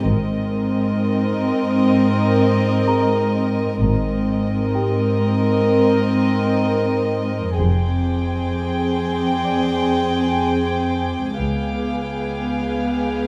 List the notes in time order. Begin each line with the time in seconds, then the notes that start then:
0.06 G#1 G#2 C4 A#4 D#5
2.88 G#4 A#5
3.80 G#1 G#2 C4 A#4 D#5
4.75 G4 G5
7.58 F1 F2 C4 G#4 G5 D6
9.44 D5 D6
11.40 C#2 B3 G#4 F5, reverse cymbal
12.87 B4 B5